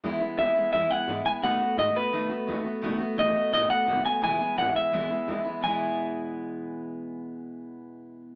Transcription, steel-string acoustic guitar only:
\new Staff \with { instrumentName = "Steel-string acoustic guitar" } { \time 4/4 \key e \major \tempo 4 = 172 <e gis b e'>8 <gis b e'>8 <e gis b e'>8 <gis b e'>8 <e gis b e'>8 <gis b e'>8 <e gis b e'>8 <gis b e'>8 | <b, dis a b fis'>8 <a b fis'>8 <dis a b fis'>8 <a b fis'>8 <b, dis a b fis'>8 <a b fis'>8 <dis a b fis'>8 <a b fis'>8 | <b, dis a b fis'>8 <a b fis'>8 <dis a b fis'>8 <a b fis'>8 <b, dis a b fis'>8 <a b fis'>8 <dis a b fis'>8 <a b fis'>8 | <e, b, e gis b e'>8 <e gis b e'>8 <e gis b e'>8 <e gis b e'>8 <e, b, e gis b e'>8 <e gis b e'>8 <e gis b e'>8 <e gis b e'>8 |
<e, b, e gis b e'>1~ | <e, b, e gis b e'>1 | }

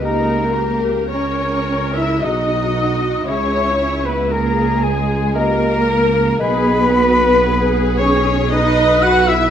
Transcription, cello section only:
\new Staff \with { instrumentName = "Cello section" } { \time 3/4 \key gis \minor \tempo 4 = 57 ais4 cis'8. e'16 dis'4 | cis'8. b16 ais8 gis8 ais4 | b4. cis'8 dis'8 fis'16 e'16 | }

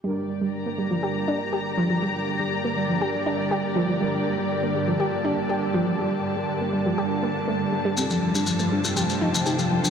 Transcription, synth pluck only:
\new Staff \with { instrumentName = "Synth pluck" } { \clef bass \time 4/4 \key g \minor \tempo 4 = 121 g16 r8 g16 r16 bes16 g16 f16 g'16 r16 d'16 r16 g'16 r16 f16 f16 | g16 r8 g16 r16 bes16 g16 f16 g'16 r16 d'16 r16 g'16 r16 f16 f16 | g16 r8 g16 r16 bes16 g16 f16 g'16 r16 d'16 r16 g'16 r16 f16 f16 | g16 r8 g16 r16 bes16 g16 f16 g'16 r16 bes16 r16 a16 r16 g16 g16 |
g16 r8 g16 r16 a16 g16 f16 g'16 r16 ees'16 r16 g'16 r16 g16 f16 | }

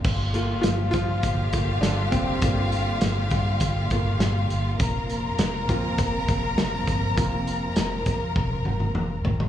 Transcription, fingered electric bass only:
\new Staff \with { instrumentName = "Fingered electric bass" } { \clef bass \time 4/4 \key bes \major \tempo 4 = 101 g,,4 g,,8 g,8 g,,8 g,,8 g,,8 f,,8 | g,,4 g,,8 g,8 g,,8 g,,8 g,,8 g,,8 | f,,4 f,,8 f,8 f,,8 f,,8 f,,8 g,,8 | f,,4 f,,8 f,8 f,,8 f,,8 f,,8 f,,8 | }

